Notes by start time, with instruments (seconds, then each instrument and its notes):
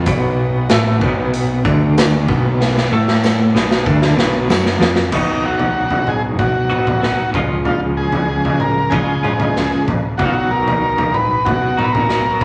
Already playing: string section B3 B4 D#5 F#5
0.06 fingered electric bass B1, clean electric guitar B2, kick, closed hi-hat
0.70 fingered electric bass A1, clean electric guitar A2, snare, closed hi-hat, tambourine
1.01 fingered electric bass B1, clean electric guitar B2, kick
1.34 closed hi-hat
1.65 fingered electric bass D2, clean electric guitar D3, kick
1.98 snare, closed hi-hat, tambourine
2.28 fingered electric bass B1, clean electric guitar B2, kick
2.61 snare
2.77 snare
2.91 fingered electric bass A2, clean electric guitar A3
3.08 snare
3.24 snare, tambourine
3.55 fingered electric bass B1, clean electric guitar B2, snare
3.71 snare
3.86 fingered electric bass D2, clean electric guitar D3, kick
4.02 snare
4.17 fingered electric bass B1, clean electric guitar B2, snare
4.49 fingered electric bass F#2, clean electric guitar F#3, snare, tambourine
4.66 snare
4.80 fingered electric bass F2, clean electric guitar F3, snare
4.96 snare
5.12 fingered electric bass B1, clean electric guitar B2 F#3 B3 D#4 F#4, transistor combo organ D#4, kick, floor tom, crash
5.45 transistor combo organ F#4
5.59 floor tom
5.90 floor tom
6.07 transistor combo organ G#4, mid tom
6.39 fingered electric bass B2, transistor combo organ F#4, kick, floor tom
6.70 clean electric guitar B2 F#3 B3 D#4 F#4, mid tom
6.87 floor tom, mid tom
7.02 fingered electric bass B1, clean electric guitar B2 F#3 B3 D#4 F#4, snare
7.33 fingered electric bass C#2, clean electric guitar C#3 F3 G#3 C#4, kick, floor tom, mid tom
7.37 clean electric guitar F4
7.65 transistor combo organ F4, floor tom
7.97 transistor combo organ G#4
8.12 floor tom
8.45 floor tom
8.60 transistor combo organ A#4, mid tom
8.90 clean electric guitar C#3 F3 G#3, fingered electric bass C#3, transistor combo organ G#4, kick, floor tom
8.94 clean electric guitar C#4 F4
9.23 clean electric guitar C#3 F3 G#3 C#4 F4, mid tom
9.40 floor tom, mid tom
9.56 fingered electric bass C#2, snare
9.88 kick, floor tom, mid tom
10.18 fingered electric bass B1, clean electric guitar B2 F#3 B3, transistor combo organ F#4, kick, floor tom
10.22 clean electric guitar D#4 F#4, transistor combo organ F4
10.32 transistor combo organ F#4
10.51 transistor combo organ A#4
10.68 floor tom
10.98 floor tom
11.14 transistor combo organ B4, mid tom
11.45 fingered electric bass B2, transistor combo organ F#4, kick, floor tom
11.77 clean electric guitar B2 F#3 B3 D#4 F#4, transistor combo organ A#4, mid tom
11.84 transistor combo organ B4
11.93 transistor combo organ A#4, floor tom, mid tom
12.09 fingered electric bass B1, clean electric guitar B2 F#3 B3 D#4 F#4, snare
12.41 kick, floor tom, mid tom